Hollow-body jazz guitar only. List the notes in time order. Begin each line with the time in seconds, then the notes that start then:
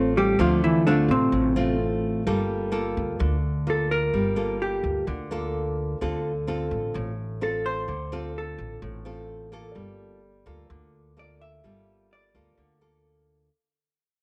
Already playing: C4 C5
0.17 G3 G4
0.40 F3 F4
0.64 E3 E4
0.87 D3 D4
1.11 C3 C4
3.70 A4
3.91 A#4
4.62 G4
7.43 A4
7.66 C5
8.38 A4
11.19 D5
11.41 E5
12.13 D5